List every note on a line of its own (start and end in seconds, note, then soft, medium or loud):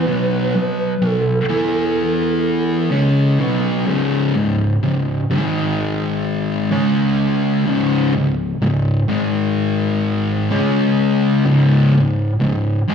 0.00 1.10 B4 medium
0.06 0.53 B2 medium
0.06 0.53 F#3 medium
0.06 0.53 B3 loud
0.54 0.93 B2 medium
0.54 0.93 F#3 medium
1.02 1.40 B2 medium
1.02 1.40 F#3 medium
1.10 2.89 A4 medium
1.49 2.90 E3 medium
1.49 2.91 B3 loud
1.49 2.91 E4 loud
2.91 3.38 C#3 medium
2.91 3.38 G#3 medium
2.91 3.38 C#4 loud
3.39 3.86 B2 medium
3.39 3.86 F#3 medium
3.39 3.86 B3 loud
3.87 4.33 C#2 medium
3.87 4.34 G#2 loud
3.87 4.34 C#3 loud
4.35 4.73 C#2 medium
4.35 4.73 G#2 medium
4.83 5.21 C#2 medium
4.83 5.21 G#2 medium
5.30 6.71 G#2 loud
5.30 6.71 D#3 medium
5.30 6.71 G#3 loud
6.72 7.66 C#3 medium
6.72 7.66 G#3 loud
6.72 7.66 C#4 loud
7.67 8.13 C#2 medium
7.67 8.13 G#2 loud
7.67 8.13 C#3 loud
8.14 8.52 C#2 medium
8.14 8.52 G#2 medium
8.62 9.00 C#2 medium
8.62 9.00 G#2 medium
9.09 10.50 G#2 medium
9.09 10.50 D#3 medium
9.09 10.50 G#3 loud
10.51 11.45 C#3 medium
10.51 11.45 G#3 loud
10.51 11.45 C#4 loud
11.45 11.92 C#2 loud
11.45 11.92 G#2 loud
11.45 11.92 C#3 loud
11.93 12.32 C#2 medium
11.93 12.32 G#2 medium
12.40 12.79 C#2 medium
12.40 12.79 G#2 medium
12.88 12.95 G#2 medium
12.88 12.95 D#3 medium
12.88 12.95 G#3 loud